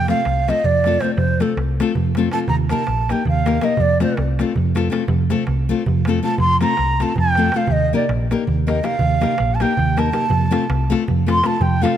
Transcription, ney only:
0.10 0.50 F5 medium
0.49 0.66 D#5 medium
0.65 1.02 D5 medium
1.00 1.15 C5 medium
1.15 1.42 C5 medium
1.41 1.57 A4 medium
2.32 2.38 A5 loud
2.49 2.55 A#5 medium
2.70 3.12 A5 medium
3.11 3.27 G5 medium
3.28 3.65 F5 medium
3.64 3.82 D#5 medium
3.81 4.02 D5 medium
4.02 4.17 C5 medium
6.24 6.39 A5 loud
6.40 6.60 C6 loud
6.61 7.03 A#5 medium
7.02 7.18 A5 medium
7.19 7.58 G5 loud
7.56 7.73 F5 medium
7.71 7.93 D#5 medium
7.95 8.10 D5 medium
8.68 8.86 D#5 medium
8.84 9.56 F5 loud
9.54 9.62 A5 medium
9.61 10.00 G5 medium
9.98 10.92 A5 medium
11.31 11.48 C6 medium
11.46 11.63 A5 medium
11.61 11.84 G5 medium
11.82 11.97 F5 medium

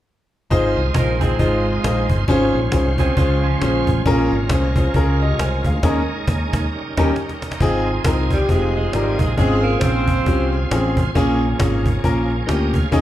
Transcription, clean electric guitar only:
0.96 1.20 A#4 medium
1.21 1.39 C4 medium
1.21 1.39 G#4 medium
1.40 2.07 G#3 medium
1.40 2.06 F4 medium
3.00 3.17 C4 medium
3.00 3.17 G#4 medium
3.17 3.42 G#3 medium
3.17 3.41 F4 medium
3.43 4.03 F3 medium
3.43 4.03 C#4 medium
6.98 7.11 G3 medium
6.98 7.10 D#4 medium

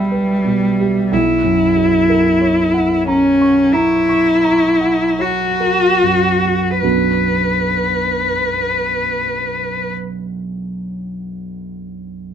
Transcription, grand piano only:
0.00 1.07 B1 soft
0.00 0.32 E5 soft
0.00 1.15 G5 soft
0.00 1.14 B5 soft
0.00 1.14 E6 soft
0.12 0.65 B4 soft
0.45 0.98 B2 soft
0.80 1.12 G4 soft
1.12 6.79 B1 soft
1.44 1.96 F#2 soft
1.77 2.28 F#4 soft
2.10 2.61 A#4 soft
2.41 2.94 C#5 soft
2.74 3.27 F#5 soft
3.08 3.61 A#5 soft
3.42 3.95 C#6 soft
3.74 4.30 A#5 soft
4.09 4.67 C#6 soft
4.44 5.05 A#5 soft
4.81 5.44 F#5 soft
5.19 5.85 C#5 soft
5.60 6.28 A#4 soft
6.03 6.68 F#2 soft
6.46 6.82 F#4 soft
6.82 9.90 B1 soft
6.82 9.91 F#2 soft
6.82 9.91 F#3 soft
6.82 9.91 B3 soft
6.82 9.91 D4 soft
6.82 9.91 F#4 soft

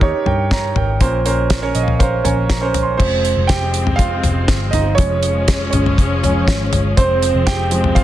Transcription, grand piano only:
0.00 1.03 D#3 medium
0.00 0.02 D#4 medium
0.00 0.20 D#4 medium
0.00 0.02 G4 medium
0.00 0.20 G4 medium
0.00 0.27 A#4 medium
0.00 1.01 C5 medium
0.00 0.20 C#5 medium
0.26 0.50 A#4 medium
0.26 0.50 G5 medium
0.52 0.76 C#5 medium
0.52 0.75 A#5 medium
0.77 1.00 A#4 soft
0.77 1.24 G5 medium
1.01 1.72 A#2 medium
1.01 1.19 C#4 medium
1.01 1.19 A#4 medium
1.01 1.19 C5 medium
1.26 1.53 C#4 medium
1.26 1.53 A#4 medium
1.26 1.53 C5 medium
1.62 1.90 C#4 medium
1.62 1.90 A#4 medium
1.62 1.90 C#5 medium
1.75 1.83 D#5 medium
1.83 1.98 F5 medium
1.99 2.18 C#4 medium
1.99 2.18 A#4 medium
1.99 2.18 C5 medium
1.99 2.23 F5 medium
2.24 2.52 C#4 medium
2.24 2.52 A#4 medium
2.24 2.52 C#5 medium
2.24 2.48 G#5 medium
2.49 2.80 A#5 medium
2.61 2.89 C#4 medium
2.61 2.89 A#4 medium
2.61 2.89 C5 medium
2.83 2.98 C6 medium
2.97 3.32 F3 soft
2.97 3.32 G#3 soft
2.97 3.46 C4 medium
2.97 3.50 C5 medium
3.47 3.96 G4 medium
3.47 4.00 G5 medium
3.96 4.70 F4 medium
3.96 4.74 F5 medium
4.71 4.97 D#4 medium
4.71 4.98 D#5 medium
4.95 5.31 F3 medium
4.95 5.31 G#3 soft
4.95 5.69 C#4 medium
4.95 5.69 C#5 medium
5.70 6.23 C#4 medium
5.70 6.42 C#5 medium
6.23 6.45 F3 soft
6.23 6.45 G#3 soft
6.23 6.46 C#4 medium
6.97 7.44 C4 medium
6.97 7.43 C5 medium
7.47 7.94 G4 medium
7.47 7.98 G5 medium
7.71 8.04 F3 medium
7.71 8.04 G#3 soft
7.71 8.04 C4 medium
7.95 8.04 F4 medium
7.95 8.04 F5 medium

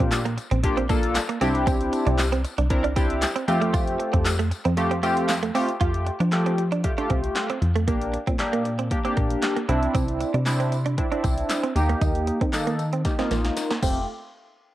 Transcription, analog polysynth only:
0.00 0.19 A#3 medium
0.00 0.19 D4 medium
0.00 0.19 F4 medium
0.00 0.20 G4 loud
0.63 0.77 A#3 loud
0.63 0.78 D4 medium
0.63 0.78 F4 medium
0.63 0.78 G4 loud
0.89 1.19 A#3 loud
0.89 1.19 D4 medium
0.89 1.19 F4 medium
0.89 1.19 A4 loud
1.41 2.24 C4 loud
1.41 2.24 D4 medium
1.41 2.24 E4 medium
1.41 2.24 G4 loud
2.70 2.84 C4 loud
2.70 2.84 D4 medium
2.70 2.84 E4 medium
2.70 2.85 A#4 loud
2.96 3.26 C4 loud
2.96 3.26 D4 medium
2.96 3.26 E4 medium
2.96 3.26 G4 loud
3.48 4.31 A3 loud
3.48 4.31 C4 medium
3.48 4.31 F4 medium
3.48 4.31 G4 loud
4.77 4.91 A3 loud
4.77 4.91 C4 medium
4.77 4.91 F4 medium
4.77 4.91 G4 loud
5.03 5.33 A3 loud
5.03 5.33 C4 medium
5.03 5.33 F4 medium
5.03 5.33 G4 loud
5.55 5.69 A3 loud
5.55 5.69 C4 medium
5.55 5.69 F4 medium
5.55 5.69 G4 loud
5.80 6.10 A3 medium
5.80 6.10 F4 medium
5.80 6.11 G4 loud
6.32 6.62 A3 medium
6.32 6.62 F4 medium
6.32 6.62 G4 loud
6.84 6.92 A3 medium
6.84 6.92 F4 medium
6.84 6.92 G4 loud
6.98 7.49 A3 medium
6.98 7.49 F4 medium
6.98 7.49 G4 loud
7.88 8.17 A#3 medium
7.88 8.17 D4 medium
7.88 8.17 G4 loud
8.39 8.69 A#3 medium
8.39 8.69 D4 medium
8.39 8.69 G4 loud
8.91 8.99 A#3 medium
8.91 8.99 D4 medium
8.91 8.99 G4 medium
9.05 9.56 A#3 medium
9.05 9.56 D4 medium
9.05 9.56 G4 loud
9.68 10.31 C4 medium
9.68 10.31 D4 medium
9.68 10.32 E4 loud
10.46 10.76 C4 medium
10.46 10.76 D4 medium
10.46 10.76 E4 loud
10.98 11.06 C4 medium
10.98 11.06 D4 medium
10.98 11.06 E4 medium
11.12 11.63 C4 medium
11.12 11.63 D4 medium
11.12 11.63 E4 medium
11.75 12.38 A#3 medium
11.75 12.38 D#4 medium
11.75 12.38 G4 loud
12.53 12.83 A#3 medium
12.53 12.83 D#4 medium
12.53 12.83 A4 loud
13.05 13.13 A#3 medium
13.05 13.13 D#4 medium
13.05 13.13 G4 loud
13.18 13.70 A#3 medium
13.18 13.70 D#4 medium
13.18 13.70 F4 loud
13.82 14.07 A3 medium
13.82 14.07 F4 medium
13.82 14.07 G4 medium

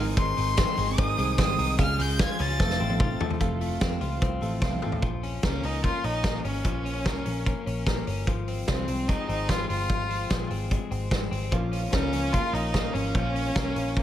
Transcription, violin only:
0.18 1.01 C6 loud
1.00 1.39 D#6 loud
1.40 1.77 D#6 loud
1.80 2.03 F6 loud
2.01 2.22 G6 loud
2.21 2.43 G#6 loud
2.42 3.21 A6 loud
5.45 5.66 C#4 medium
5.65 5.84 D#4 medium
5.85 6.06 F4 loud
6.04 6.45 D#4 medium
6.46 8.04 C#4 medium
8.68 9.10 C4 medium
9.08 9.28 D#4 loud
9.29 9.51 D#4 medium
9.49 9.69 F4 loud
9.69 10.47 F4 medium
11.92 12.34 C#4 medium
12.32 12.55 F4 loud
12.53 12.94 D#4 medium
12.93 14.03 C#4 medium

